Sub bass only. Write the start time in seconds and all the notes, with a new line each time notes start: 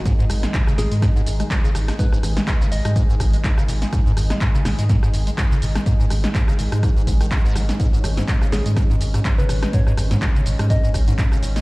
0.30 G#1
0.78 G#1
0.92 G#2
1.27 G#1
1.75 G#1
2.23 G#1
2.72 G#1
2.85 G#2
3.20 G#1
3.68 G#1
4.17 G#1
4.65 G#1
4.79 G#2
5.14 G#1
5.62 G#1
6.10 G#1
6.59 G#1
6.72 G#2
7.07 G#1
7.56 G#1
8.04 G#1
8.52 G#1
8.66 G#2
9.01 G#1
9.49 G#1
9.98 G#1
10.46 G#1
10.59 G#2
10.94 G#1
11.43 G#1